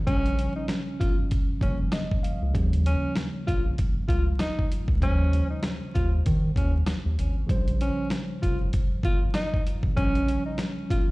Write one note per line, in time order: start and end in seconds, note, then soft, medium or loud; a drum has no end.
0.05 0.48 A#1 loud
0.05 1.58 C#3 medium
0.05 1.58 F3 medium
0.05 1.59 G3 medium
0.05 0.53 C#4 loud
0.05 kick loud
0.05 closed hi-hat medium
0.09 1.60 C#4 medium
0.26 closed hi-hat medium
0.39 closed hi-hat medium
0.56 0.67 D#4 medium
0.68 snare loud
0.68 snare medium
0.68 closed hi-hat medium
1.00 1.26 G1 medium
1.00 1.16 F4 medium
1.00 kick loud
1.00 closed hi-hat medium
1.31 kick loud
1.31 closed hi-hat loud
1.60 1.87 F1 medium
1.60 2.52 C#3 medium
1.60 2.53 F3 medium
1.60 2.54 G3 medium
1.60 2.55 A#3 medium
1.60 1.78 C#4 medium
1.60 kick loud
1.60 closed hi-hat medium
1.92 2.22 D#5 medium
1.92 snare loud
1.92 closed hi-hat medium
2.11 kick medium
2.23 2.52 F5 medium
2.23 closed hi-hat medium
2.42 2.52 C#2 medium
2.53 2.95 D#2 loud
2.53 4.97 C#3 medium
2.53 4.98 F3 medium
2.53 4.99 G3 medium
2.53 kick loud
2.53 closed hi-hat medium
2.57 4.99 A#3 medium
2.73 closed hi-hat medium
2.86 3.14 C#4 medium
2.86 closed hi-hat medium
3.16 snare loud
3.16 snare medium
3.16 closed hi-hat medium
3.47 3.73 A#1 medium
3.47 3.64 F4 medium
3.47 kick loud
3.47 closed hi-hat medium
3.78 kick loud
3.78 closed hi-hat loud
4.08 4.34 C#2 loud
4.08 4.25 F4 medium
4.08 kick loud
4.08 closed hi-hat medium
4.39 4.68 D#4 medium
4.39 snare loud
4.39 snare medium
4.39 closed hi-hat medium
4.59 kick medium
4.72 closed hi-hat medium
4.88 5.04 C#2 medium
4.88 kick medium
5.01 5.42 D#2 loud
5.01 7.45 C#3 medium
5.01 7.45 F3 medium
5.01 7.46 G3 medium
5.01 5.49 C#4 loud
5.01 kick loud
5.01 closed hi-hat medium
5.05 7.47 C5 medium
5.33 closed hi-hat medium
5.50 5.62 D#4 medium
5.63 snare loud
5.63 snare medium
5.63 closed hi-hat medium
5.95 6.21 D#2 medium
5.95 6.11 F4 medium
5.95 kick loud
5.95 closed hi-hat medium
6.26 6.52 D#3 loud
6.26 kick loud
6.26 closed hi-hat loud
6.56 6.82 D#2 medium
6.56 6.73 C#4 medium
6.56 kick loud
6.56 closed hi-hat medium
6.86 snare loud
6.86 closed hi-hat medium
7.06 7.16 D#2 medium
7.18 7.44 G#1 medium
7.18 closed hi-hat medium
7.47 7.90 A#1 loud
7.47 9.91 C#3 medium
7.47 9.92 F3 medium
7.47 9.93 G3 medium
7.47 9.93 C5 medium
7.47 kick loud
7.47 closed hi-hat medium
7.68 closed hi-hat medium
7.81 8.09 C#4 medium
7.81 closed hi-hat medium
8.10 snare loud
8.10 snare medium
8.10 closed hi-hat medium
8.42 8.68 F1 medium
8.42 8.58 F4 medium
8.42 kick loud
8.42 closed hi-hat medium
8.73 kick loud
8.73 closed hi-hat loud
9.03 9.29 G1 loud
9.03 9.21 F4 medium
9.03 kick loud
9.03 closed hi-hat medium
9.34 9.63 D#4 medium
9.34 snare loud
9.34 snare medium
9.34 closed hi-hat medium
9.54 kick medium
9.67 closed hi-hat medium
9.83 9.94 G#1 medium
9.83 kick medium
9.95 10.37 A#1 loud
9.95 11.11 C#3 medium
9.95 11.11 F3 medium
9.95 11.11 G3 medium
9.95 10.43 C#4 loud
9.95 11.11 C#4 medium
9.95 kick loud
9.95 closed hi-hat medium
10.15 closed hi-hat medium
10.28 closed hi-hat medium
10.46 10.57 D#4 medium
10.58 snare loud
10.58 snare medium
10.58 closed hi-hat medium
10.90 11.11 G1 medium
10.90 11.06 F4 medium
10.90 kick loud
10.90 closed hi-hat medium